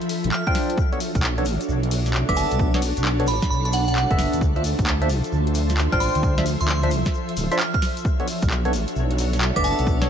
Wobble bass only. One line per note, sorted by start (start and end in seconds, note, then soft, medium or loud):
0.24 0.31 A1 medium
1.15 1.47 B1 loud
1.46 1.58 A1 medium
1.68 2.24 B1 medium
2.29 2.45 F#1 loud
2.51 2.92 B1 medium
2.97 3.29 B1 medium
3.28 3.39 A1 medium
3.50 4.06 B1 medium
4.11 4.27 F#1 loud
4.33 4.74 D2 medium
4.79 5.11 D2 medium
5.09 5.21 C2 medium
5.32 5.88 D2 medium
5.92 6.09 A1 loud
6.15 6.56 D2 medium
6.61 6.93 D2 loud
6.91 7.03 C2 medium
7.37 7.48 D1 loud
8.42 8.75 B1 loud
8.73 8.85 A1 medium
8.96 9.51 B1 medium
9.56 9.73 F#1 loud
9.79 10.10 B1 medium